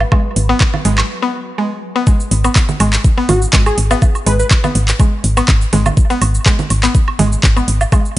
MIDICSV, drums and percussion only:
0, 0, Header, 1, 2, 480
1, 0, Start_track
1, 0, Key_signature, 5, "minor"
1, 0, Tempo, 487805
1, 116, Time_signature, 4, 2, 24, 8
1, 8057, End_track
2, 0, Start_track
2, 0, Title_t, "Drums"
2, 4, Note_on_c, 9, 77, 71
2, 103, Note_off_c, 9, 77, 0
2, 116, Note_on_c, 9, 36, 113
2, 116, Note_on_c, 9, 76, 84
2, 116, Note_on_c, 9, 77, 55
2, 214, Note_off_c, 9, 76, 0
2, 214, Note_off_c, 9, 77, 0
2, 215, Note_off_c, 9, 36, 0
2, 357, Note_on_c, 9, 46, 89
2, 455, Note_off_c, 9, 46, 0
2, 596, Note_on_c, 9, 36, 111
2, 596, Note_on_c, 9, 76, 41
2, 597, Note_on_c, 9, 39, 91
2, 694, Note_off_c, 9, 76, 0
2, 695, Note_off_c, 9, 36, 0
2, 695, Note_off_c, 9, 39, 0
2, 725, Note_on_c, 9, 64, 79
2, 725, Note_on_c, 9, 77, 68
2, 823, Note_off_c, 9, 64, 0
2, 823, Note_off_c, 9, 77, 0
2, 836, Note_on_c, 9, 46, 84
2, 935, Note_off_c, 9, 46, 0
2, 964, Note_on_c, 9, 76, 78
2, 966, Note_on_c, 9, 39, 64
2, 1063, Note_off_c, 9, 76, 0
2, 1064, Note_off_c, 9, 39, 0
2, 2036, Note_on_c, 9, 36, 122
2, 2036, Note_on_c, 9, 69, 51
2, 2135, Note_off_c, 9, 36, 0
2, 2135, Note_off_c, 9, 69, 0
2, 2165, Note_on_c, 9, 69, 30
2, 2264, Note_off_c, 9, 69, 0
2, 2276, Note_on_c, 9, 46, 91
2, 2375, Note_off_c, 9, 46, 0
2, 2405, Note_on_c, 9, 69, 44
2, 2405, Note_on_c, 9, 76, 42
2, 2503, Note_off_c, 9, 69, 0
2, 2504, Note_off_c, 9, 76, 0
2, 2516, Note_on_c, 9, 36, 120
2, 2516, Note_on_c, 9, 39, 100
2, 2516, Note_on_c, 9, 69, 54
2, 2615, Note_off_c, 9, 36, 0
2, 2615, Note_off_c, 9, 39, 0
2, 2615, Note_off_c, 9, 69, 0
2, 2644, Note_on_c, 9, 69, 31
2, 2645, Note_on_c, 9, 64, 82
2, 2743, Note_off_c, 9, 64, 0
2, 2743, Note_off_c, 9, 69, 0
2, 2756, Note_on_c, 9, 46, 93
2, 2757, Note_on_c, 9, 76, 82
2, 2854, Note_off_c, 9, 46, 0
2, 2855, Note_off_c, 9, 76, 0
2, 2885, Note_on_c, 9, 39, 66
2, 2885, Note_on_c, 9, 69, 46
2, 2983, Note_off_c, 9, 39, 0
2, 2983, Note_off_c, 9, 69, 0
2, 2996, Note_on_c, 9, 36, 121
2, 2996, Note_on_c, 9, 69, 51
2, 3094, Note_off_c, 9, 69, 0
2, 3095, Note_off_c, 9, 36, 0
2, 3236, Note_on_c, 9, 46, 88
2, 3237, Note_on_c, 9, 64, 102
2, 3237, Note_on_c, 9, 76, 44
2, 3334, Note_off_c, 9, 46, 0
2, 3335, Note_off_c, 9, 64, 0
2, 3335, Note_off_c, 9, 76, 0
2, 3364, Note_on_c, 9, 69, 44
2, 3462, Note_off_c, 9, 69, 0
2, 3476, Note_on_c, 9, 36, 117
2, 3476, Note_on_c, 9, 39, 100
2, 3476, Note_on_c, 9, 69, 55
2, 3575, Note_off_c, 9, 36, 0
2, 3575, Note_off_c, 9, 39, 0
2, 3575, Note_off_c, 9, 69, 0
2, 3605, Note_on_c, 9, 69, 30
2, 3605, Note_on_c, 9, 76, 80
2, 3703, Note_off_c, 9, 69, 0
2, 3703, Note_off_c, 9, 76, 0
2, 3716, Note_on_c, 9, 46, 95
2, 3815, Note_off_c, 9, 46, 0
2, 3845, Note_on_c, 9, 69, 46
2, 3845, Note_on_c, 9, 77, 78
2, 3943, Note_off_c, 9, 69, 0
2, 3943, Note_off_c, 9, 77, 0
2, 3956, Note_on_c, 9, 36, 119
2, 3956, Note_on_c, 9, 69, 52
2, 3956, Note_on_c, 9, 77, 58
2, 4054, Note_off_c, 9, 77, 0
2, 4055, Note_off_c, 9, 36, 0
2, 4055, Note_off_c, 9, 69, 0
2, 4085, Note_on_c, 9, 69, 31
2, 4085, Note_on_c, 9, 76, 40
2, 4183, Note_off_c, 9, 69, 0
2, 4183, Note_off_c, 9, 76, 0
2, 4197, Note_on_c, 9, 46, 101
2, 4295, Note_off_c, 9, 46, 0
2, 4325, Note_on_c, 9, 69, 45
2, 4423, Note_off_c, 9, 69, 0
2, 4436, Note_on_c, 9, 36, 127
2, 4436, Note_on_c, 9, 39, 97
2, 4436, Note_on_c, 9, 69, 53
2, 4436, Note_on_c, 9, 76, 78
2, 4535, Note_off_c, 9, 36, 0
2, 4535, Note_off_c, 9, 39, 0
2, 4535, Note_off_c, 9, 69, 0
2, 4535, Note_off_c, 9, 76, 0
2, 4565, Note_on_c, 9, 64, 84
2, 4565, Note_on_c, 9, 69, 30
2, 4565, Note_on_c, 9, 77, 73
2, 4663, Note_off_c, 9, 69, 0
2, 4664, Note_off_c, 9, 64, 0
2, 4664, Note_off_c, 9, 77, 0
2, 4676, Note_on_c, 9, 46, 96
2, 4774, Note_off_c, 9, 46, 0
2, 4805, Note_on_c, 9, 39, 67
2, 4805, Note_on_c, 9, 69, 45
2, 4903, Note_off_c, 9, 39, 0
2, 4903, Note_off_c, 9, 69, 0
2, 4916, Note_on_c, 9, 36, 123
2, 4916, Note_on_c, 9, 69, 50
2, 4917, Note_on_c, 9, 76, 41
2, 5015, Note_off_c, 9, 36, 0
2, 5015, Note_off_c, 9, 69, 0
2, 5015, Note_off_c, 9, 76, 0
2, 5156, Note_on_c, 9, 46, 92
2, 5254, Note_off_c, 9, 46, 0
2, 5285, Note_on_c, 9, 69, 44
2, 5285, Note_on_c, 9, 76, 82
2, 5383, Note_off_c, 9, 69, 0
2, 5384, Note_off_c, 9, 76, 0
2, 5396, Note_on_c, 9, 36, 127
2, 5396, Note_on_c, 9, 39, 99
2, 5396, Note_on_c, 9, 69, 55
2, 5495, Note_off_c, 9, 36, 0
2, 5495, Note_off_c, 9, 39, 0
2, 5495, Note_off_c, 9, 69, 0
2, 5525, Note_on_c, 9, 69, 30
2, 5623, Note_off_c, 9, 69, 0
2, 5636, Note_on_c, 9, 46, 93
2, 5636, Note_on_c, 9, 64, 99
2, 5734, Note_off_c, 9, 46, 0
2, 5735, Note_off_c, 9, 64, 0
2, 5764, Note_on_c, 9, 69, 45
2, 5765, Note_on_c, 9, 64, 82
2, 5765, Note_on_c, 9, 76, 40
2, 5765, Note_on_c, 9, 77, 82
2, 5863, Note_off_c, 9, 64, 0
2, 5863, Note_off_c, 9, 69, 0
2, 5863, Note_off_c, 9, 76, 0
2, 5863, Note_off_c, 9, 77, 0
2, 5876, Note_on_c, 9, 36, 122
2, 5876, Note_on_c, 9, 69, 49
2, 5974, Note_off_c, 9, 69, 0
2, 5975, Note_off_c, 9, 36, 0
2, 6004, Note_on_c, 9, 69, 29
2, 6103, Note_off_c, 9, 69, 0
2, 6116, Note_on_c, 9, 46, 100
2, 6116, Note_on_c, 9, 76, 76
2, 6214, Note_off_c, 9, 46, 0
2, 6215, Note_off_c, 9, 76, 0
2, 6244, Note_on_c, 9, 69, 42
2, 6343, Note_off_c, 9, 69, 0
2, 6356, Note_on_c, 9, 36, 127
2, 6356, Note_on_c, 9, 39, 94
2, 6356, Note_on_c, 9, 69, 50
2, 6454, Note_off_c, 9, 39, 0
2, 6454, Note_off_c, 9, 69, 0
2, 6455, Note_off_c, 9, 36, 0
2, 6484, Note_on_c, 9, 64, 84
2, 6484, Note_on_c, 9, 69, 28
2, 6583, Note_off_c, 9, 64, 0
2, 6583, Note_off_c, 9, 69, 0
2, 6596, Note_on_c, 9, 46, 93
2, 6596, Note_on_c, 9, 76, 39
2, 6694, Note_off_c, 9, 46, 0
2, 6695, Note_off_c, 9, 76, 0
2, 6725, Note_on_c, 9, 39, 67
2, 6725, Note_on_c, 9, 69, 44
2, 6823, Note_off_c, 9, 39, 0
2, 6823, Note_off_c, 9, 69, 0
2, 6836, Note_on_c, 9, 36, 122
2, 6836, Note_on_c, 9, 69, 49
2, 6934, Note_off_c, 9, 36, 0
2, 6935, Note_off_c, 9, 69, 0
2, 6965, Note_on_c, 9, 76, 79
2, 7063, Note_off_c, 9, 76, 0
2, 7076, Note_on_c, 9, 46, 94
2, 7076, Note_on_c, 9, 64, 99
2, 7175, Note_off_c, 9, 46, 0
2, 7175, Note_off_c, 9, 64, 0
2, 7205, Note_on_c, 9, 69, 43
2, 7304, Note_off_c, 9, 69, 0
2, 7316, Note_on_c, 9, 36, 127
2, 7317, Note_on_c, 9, 39, 92
2, 7317, Note_on_c, 9, 69, 50
2, 7414, Note_off_c, 9, 36, 0
2, 7415, Note_off_c, 9, 39, 0
2, 7415, Note_off_c, 9, 69, 0
2, 7445, Note_on_c, 9, 69, 28
2, 7445, Note_on_c, 9, 76, 37
2, 7543, Note_off_c, 9, 76, 0
2, 7544, Note_off_c, 9, 69, 0
2, 7557, Note_on_c, 9, 46, 102
2, 7655, Note_off_c, 9, 46, 0
2, 7684, Note_on_c, 9, 77, 85
2, 7685, Note_on_c, 9, 69, 41
2, 7783, Note_off_c, 9, 69, 0
2, 7783, Note_off_c, 9, 77, 0
2, 7796, Note_on_c, 9, 36, 125
2, 7796, Note_on_c, 9, 69, 48
2, 7796, Note_on_c, 9, 76, 77
2, 7796, Note_on_c, 9, 77, 60
2, 7894, Note_off_c, 9, 36, 0
2, 7895, Note_off_c, 9, 69, 0
2, 7895, Note_off_c, 9, 76, 0
2, 7895, Note_off_c, 9, 77, 0
2, 7924, Note_on_c, 9, 69, 29
2, 8023, Note_off_c, 9, 69, 0
2, 8057, End_track
0, 0, End_of_file